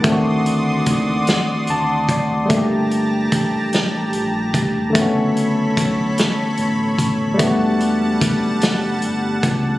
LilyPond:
<<
  \new Staff \with { instrumentName = "Analog synth pad" } { \time 6/8 \key d \major \tempo 4. = 49 <fis' d'' c''' ees'''>2. | <g' a'' bes''>2. | <a' cis'' b''>2. | <g fis'' a''>2. | }
  \new Staff \with { instrumentName = "Tine electric piano" } { \time 6/8 \key d \major r2 a''8 d''8 | r2. | r2. | r2. | }
  \new Staff \with { instrumentName = "Tine electric piano" } { \time 6/8 \key d \major <ees a c' d' fis'>2. | <g a bes d' g'>2. | <d a b cis' fis'>2. | <g a b d' fis'>2. | }
  \new Staff \with { instrumentName = "Analog synth bass" } { \clef bass \time 6/8 \key d \major d,4 ees,8 d,8 d,4 | g,,4 a,,4 bes,,8 e,,8 | fis,,4 b,,8 a,,8 a,,4 | e,,4 fis,,4 g,,8 cis,8 | }
  \new DrumStaff \with { instrumentName = "Drums" } \drummode { \time 6/8 <hh bd>8 hh8 <hh bd>8 <hh sn>8 hh8 <hh bd>8 | <hh bd>8 hh8 <hh bd>8 <hh sn>8 hh8 <hh bd>8 | <hh bd>8 hh8 <hh bd>8 <hh sn>8 hh8 <hh bd>8 | <hh bd>8 hh8 <hh bd>8 <hh sn>8 hh8 <hh bd>8 | }
>>